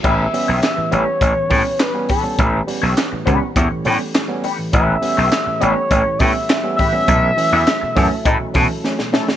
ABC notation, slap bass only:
X:1
M:4/4
L:1/16
Q:1/4=102
K:A
V:1 name="Slap bass" clef=bass
A,,,2 z B,,, z2 A,,, z A,,, z A,, z4 z | A,,,2 z B,,, z2 C,, z E,, z A,, z4 z | A,,,2 z B,,, z2 A,,, z A,,, z A,, z4 z | B,,,2 z E,, z2 F,, z A,, z B,, z4 z |]